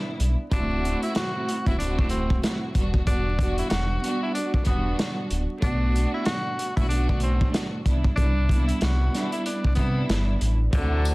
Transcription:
Already playing: string section G3 B3 D4 E4
0.20 sub bass B1, closed hi-hat
0.52 sub bass D1, string section A3 C4 E4 F#4, tenor saxophone D4, kick, closed hi-hat
0.85 closed hi-hat
1.03 tenor saxophone E4, closed hi-hat
1.15 tenor saxophone F#4, snare, closed hi-hat
1.49 closed hi-hat
1.66 sub bass D1, string section A3 C4 E4 F#4, tenor saxophone E4, kick, closed hi-hat
1.77 string section A3 C4 E4 F#4, tenor saxophone D4, closed hi-hat
1.99 tenor saxophone D4, kick
2.09 tenor saxophone C4, closed hi-hat
2.30 kick
2.42 string section A3 C4 E4 F#4, snare, closed hi-hat
2.75 sub bass E1, string section G3 B3 D4 F#4, kick, closed hi-hat
2.94 kick
3.05 sub bass E1, string section G3 B3 D4 F#4, tenor saxophone D4, kick, closed hi-hat
3.39 string section G3 B3 D4 F#4, kick, closed hi-hat
3.58 tenor saxophone E4, closed hi-hat
3.69 sub bass E1, tenor saxophone F#4, snare, closed hi-hat
4.01 string section G3 B3 D4 F#4, closed hi-hat
4.22 tenor saxophone E4
4.34 tenor saxophone D4, closed hi-hat
4.54 tenor saxophone D4, kick
4.63 sub bass E1, string section G3 B3 D4 F#4, tenor saxophone B3, kick, closed hi-hat
4.99 snare, closed hi-hat
5.30 sub bass D1, closed hi-hat
5.60 sub bass B1, string section A3 B3 D4 F#4, tenor saxophone D4, kick, closed hi-hat
5.96 closed hi-hat
6.14 tenor saxophone E4
6.25 tenor saxophone F#4, snare, closed hi-hat
6.59 closed hi-hat
6.76 sub bass B1, string section A3 B3 D4, tenor saxophone E4, kick, closed hi-hat
6.80 string section F#4
6.88 string section A3 B3 D4 F#4, tenor saxophone D4, closed hi-hat
7.09 tenor saxophone D4, kick
7.20 tenor saxophone C4, closed hi-hat
7.41 kick
7.50 string section A3 B3 D4 F#4, snare, closed hi-hat
7.85 sub bass C2, string section G3 B3 D4 E4, kick, closed hi-hat
8.05 kick
8.16 sub bass C2, string section G3 B3, tenor saxophone D4, kick, closed hi-hat
8.20 string section D4 E4
8.49 string section G3 B3 D4 E4, kick, closed hi-hat
8.67 tenor saxophone E4, closed hi-hat
8.81 sub bass C2, tenor saxophone F#4, snare, closed hi-hat
9.12 string section G3 B3 D4 E4, snare, closed hi-hat
9.32 tenor saxophone E4, closed hi-hat
9.46 tenor saxophone D4, closed hi-hat
9.65 sub bass C2, tenor saxophone D4, kick
9.75 sub bass C3, string section G3 B3 D4 E4, tenor saxophone B3, kick, closed hi-hat
10.09 sub bass G1, snare, closed hi-hat
10.41 sub bass A1, closed hi-hat
10.72 sub bass D2, tenor saxophone D3, trumpet section F#3 D4 A4, string section A3 C4 E4 F#4, tonewheel organ C5 F#5 A5 D6, kick, closed hi-hat
11.05 closed hi-hat, tambourine

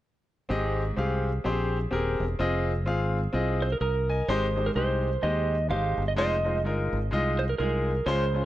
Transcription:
0.49 fingered electric bass G#1, grand piano G#2 C4 G4 G#4 D#5
0.96 fingered electric bass C2, grand piano C4 G4 G#4 F5
1.44 fingered electric bass A#1, grand piano C4 G4 G#4 C5
1.91 fingered electric bass D#1, grand piano C4 G4 G#4 A#4
2.20 fingered electric bass E1
2.39 fingered electric bass F1, grand piano C4 F4 G#4 D#5
2.86 fingered electric bass G#1, grand piano C4 F4 G#4 F5
3.33 fingered electric bass C2, grand piano C4 F4 G#4 D#5
3.62 electric slide guitar C5
3.72 electric slide guitar A#4
3.81 fingered electric bass C2, electric slide guitar A#4, grand piano A#5 D#6
4.09 grand piano D#5 G#5
4.28 fingered electric bass G#1, grand piano G#2 G#3 D#4 G4 C5, electric slide guitar C5
4.56 grand piano G#3 D#4 G4 C5
4.66 electric slide guitar A#4
4.75 fingered electric bass C2, grand piano G#3 D#4 G4 C5, electric slide guitar C5
5.22 fingered electric bass D#2, grand piano G#3 D#4 G4 C5, electric slide guitar D#5
5.69 fingered electric bass G#1, grand piano G#3 D#4 G4 C5, electric slide guitar F5
5.98 fingered electric bass G1
6.08 electric slide guitar D#5
6.16 fingered electric bass F1, grand piano G#3 D#4 F4 C5, electric slide guitar D#5
6.44 grand piano G#3 D#4 F4 C5
6.64 fingered electric bass G1, grand piano G#3 D#4 F4 A#4
6.93 fingered electric bass G#1
7.11 fingered electric bass C2, grand piano G#3 D#4 F4 D#5
7.39 electric slide guitar C5
7.49 electric slide guitar A#4
7.58 fingered electric bass C2, grand piano G#3 D#4 F4 G#4, electric slide guitar A#4
8.06 fingered electric bass C#2, grand piano C#3 G#3 C#4 F4 C5, electric slide guitar C5
8.33 grand piano G#3 C#4 F4 C5

